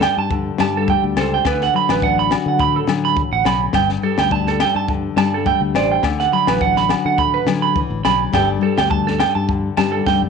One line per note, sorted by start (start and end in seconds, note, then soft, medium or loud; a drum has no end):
0.00 1.42 G2 medium
0.00 0.58 G3 medium
0.00 2.02 D4 medium
0.00 1.17 A4 medium
0.00 0.16 G5 medium
0.00 snare medium
0.00 low agogo medium
0.17 0.50 G2 medium
0.17 0.30 A5 medium
0.31 1.42 D3 medium
0.31 kick loud
0.58 0.94 G2 medium
0.58 1.42 G3 medium
0.58 0.74 A5 medium
0.58 snare medium
0.58 low agogo medium
0.77 0.88 A4 medium
0.88 3.76 A3 medium
0.88 1.03 G5 medium
0.88 kick loud
1.04 1.14 D2 medium
1.16 1.39 C#2 medium
1.16 1.31 A4 medium
1.16 1.42 C5 medium
1.16 snare medium
1.16 low agogo medium
1.34 1.45 G5 medium
1.45 1.67 D2 loud
1.45 3.71 D3 medium
1.45 1.60 B4 medium
1.45 kick medium
1.45 snare medium
1.45 low agogo medium
1.61 1.74 F#5 medium
1.61 snare soft
1.74 2.86 F#3 medium
1.74 1.89 B5 medium
1.89 2.34 A1 medium
1.89 2.02 B4 medium
1.89 snare medium
1.89 low agogo medium
2.02 4.31 D4 medium
2.02 2.17 F#5 medium
2.02 kick loud
2.19 2.31 B5 medium
2.31 3.74 F#4 medium
2.31 snare medium
2.31 low agogo medium
2.46 2.79 D3 medium
2.46 2.59 F#5 medium
2.59 3.71 A2 medium
2.59 2.74 B5 loud
2.59 kick loud
2.76 2.88 A4 medium
2.87 3.23 D3 medium
2.87 3.15 F#3 medium
2.87 snare medium
2.87 low agogo medium
3.05 3.16 B5 medium
3.16 muted nylon-string guitar stroke medium
3.16 kick loud
3.32 3.43 A1 medium
3.32 3.45 F#5 medium
3.44 3.68 B1 medium
3.44 3.73 F#3 medium
3.44 3.60 B5 medium
3.44 snare medium
3.44 low agogo medium
3.73 3.96 G1 loud
3.73 6.00 G2 medium
3.73 3.89 G5 loud
3.73 kick medium
3.73 snare medium
3.73 low agogo medium
3.89 snare soft
4.03 5.16 G3 medium
4.03 4.18 A4 medium
4.18 4.63 D2 medium
4.18 4.31 G5 medium
4.18 snare medium
4.18 low agogo medium
4.31 6.61 D4 medium
4.31 4.46 A5 medium
4.31 kick loud
4.47 4.60 A4 medium
4.47 snare soft
4.60 5.75 A4 medium
4.60 4.75 G5 medium
4.60 snare medium
4.60 low agogo medium
4.75 5.08 G2 medium
4.75 4.88 A5 medium
4.88 6.00 D3 medium
4.88 kick loud
5.16 5.52 G2 medium
5.16 6.00 G3 medium
5.16 5.32 A5 medium
5.16 snare medium
5.16 low agogo medium
5.34 5.46 A4 medium
5.46 8.34 A3 medium
5.46 5.61 G5 medium
5.46 kick loud
5.61 5.71 D2 medium
5.74 5.97 A1 medium
5.74 6.01 C5 medium
5.74 5.90 D5 medium
5.74 snare medium
5.74 low agogo medium
5.91 6.03 G5 medium
6.03 6.26 D2 loud
6.03 8.30 D3 medium
6.03 muted clean electric guitar stroke loud
6.03 kick medium
6.03 snare medium
6.03 low agogo medium
6.19 6.32 F#5 medium
6.19 snare soft
6.32 7.46 F#3 medium
6.32 6.47 B5 medium
6.47 6.93 A1 loud
6.47 6.60 B4 medium
6.47 snare medium
6.47 low agogo medium
6.61 8.35 D4 medium
6.61 6.76 F#5 medium
6.61 kick loud
6.76 6.89 B5 medium
6.76 snare soft
6.89 8.34 F#4 medium
6.89 snare medium
6.89 low agogo medium
7.05 7.38 D3 medium
7.05 7.18 F#5 medium
7.18 8.30 A2 medium
7.18 7.33 B5 loud
7.18 kick loud
7.34 7.46 B4 medium
7.46 7.81 D3 medium
7.46 7.76 F#3 medium
7.46 snare medium
7.46 low agogo medium
7.62 7.75 B5 medium
7.76 8.05 E3 medium
7.76 kick loud
7.90 8.01 A1 medium
8.05 8.27 B1 medium
8.05 8.33 F#3 medium
8.05 8.19 B5 medium
8.05 snare medium
8.05 low agogo medium
8.33 8.56 G1 loud
8.33 10.29 G2 medium
8.33 8.60 G3 medium
8.33 10.06 A3 medium
8.33 8.89 D4 medium
8.33 9.19 A4 medium
8.33 8.48 G5 loud
8.33 kick loud
8.33 snare medium
8.33 low agogo medium
8.61 9.76 G3 medium
8.61 8.77 A4 medium
8.78 9.23 D2 medium
8.78 8.90 G5 medium
8.78 snare medium
8.78 low agogo medium
8.90 10.29 D4 medium
8.90 9.05 A5 medium
8.90 kick loud
9.07 9.19 A4 medium
9.07 snare soft
9.20 10.29 A4 medium
9.20 9.34 G5 medium
9.20 snare medium
9.20 low agogo medium
9.35 9.68 G2 medium
9.35 9.47 A5 medium
9.48 10.29 D3 medium
9.48 kick loud
9.77 10.00 G2 medium
9.77 10.29 G3 medium
9.77 9.92 A5 medium
9.77 snare medium
9.77 low agogo medium
9.92 10.04 A4 medium
10.06 10.20 G2 medium
10.06 10.29 A3 medium
10.06 10.21 G5 medium
10.06 kick medium
10.06 snare medium
10.22 10.29 F#2 medium